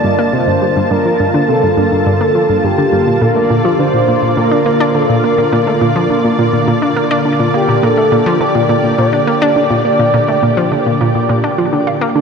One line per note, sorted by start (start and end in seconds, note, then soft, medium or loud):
0.00 3.17 D3 medium
0.00 12.21 A#3 medium
0.00 7.79 F4 medium
0.00 0.34 D5 loud
0.00 3.17 A5 medium
0.04 0.13 G2 medium
0.19 0.28 A#3 loud
0.33 0.47 C3 medium
0.33 0.90 C5 loud
0.48 0.57 G2 medium
0.62 0.71 G3 medium
0.77 0.86 G2 loud
0.91 0.96 G2 loud
0.91 1.44 A#4 loud
1.05 1.14 F3 medium
1.20 1.29 G2 loud
1.34 1.48 D3 medium
1.48 1.62 C3 medium
1.48 2.65 A4 loud
1.63 1.72 G2 medium
1.77 1.86 G2 loud
1.92 2.05 G2 medium
2.06 2.20 G2 medium
2.21 2.30 A#3 medium
2.35 2.40 F3 medium
2.50 2.59 G2 medium
2.64 2.73 G2 medium
2.64 3.21 G4 medium
2.78 2.84 D3 medium
2.93 3.02 G2 medium
3.07 3.16 A#2 medium
3.21 3.27 A#2 loud
3.21 12.21 D3 medium
3.21 3.61 A#4 loud
3.21 12.21 D5 medium
3.36 3.45 A3 medium
3.50 3.59 A#2 loud
3.61 3.81 A4 loud
3.65 3.78 F3 loud
3.79 3.93 D3 medium
3.79 4.36 C5 loud
3.94 4.03 A#2 medium
4.08 4.17 A#2 loud
4.23 4.36 A#2 medium
4.37 4.51 A#2 medium
4.37 4.96 A#4 loud
4.51 4.60 D4 medium
4.66 4.79 A#3 medium
4.80 4.89 D4 loud
4.95 5.08 D3 medium
4.95 5.25 A4 medium
5.09 5.18 A#2 medium
5.24 5.33 A#3 medium
5.24 6.39 A#4 medium
5.38 5.47 A#2 loud
5.53 5.58 A#2 loud
5.67 5.76 A3 medium
5.81 5.90 A#2 loud
5.96 6.09 F3 loud
6.10 6.24 D3 medium
6.24 6.33 A#2 medium
6.39 6.48 A#2 loud
6.53 6.67 A#2 medium
6.68 6.81 A#2 loud
6.82 6.91 D4 medium
6.96 7.10 A#3 loud
7.11 7.20 D4 loud
7.25 7.39 D3 medium
7.40 7.49 A#2 medium
7.54 7.63 A#3 medium
7.54 7.85 G4 medium
7.69 7.78 A#2 loud
7.83 7.88 A#2 loud
7.83 12.21 G4 medium
7.83 8.43 A4 loud
7.97 8.07 A3 medium
8.12 8.21 A#2 loud
8.26 8.40 F3 loud
8.41 8.54 D3 medium
8.41 8.98 D5 loud
8.55 8.64 A#2 medium
8.69 8.79 A#2 loud
8.84 8.97 A#2 medium
8.98 9.12 A#2 loud
8.98 11.83 D5 loud
9.13 9.22 D4 medium
9.27 9.41 A#3 loud
9.42 9.51 D4 loud
9.56 9.70 D3 medium
9.71 9.80 A#2 medium
9.85 9.94 A#3 medium
9.99 10.08 A#2 loud
10.14 10.19 A#2 loud
10.28 10.37 A3 medium
10.43 10.52 A#2 loud
10.57 10.71 F3 loud
10.72 10.85 D3 medium
10.86 10.95 A#2 medium
11.01 11.10 A#2 loud
11.15 11.28 A#2 medium
11.29 11.43 A#2 medium
11.44 11.53 D4 medium
11.58 11.67 F3 medium
11.73 11.86 D3 medium
11.87 11.96 F4 medium
12.01 12.15 A#3 loud
12.16 12.21 D3 loud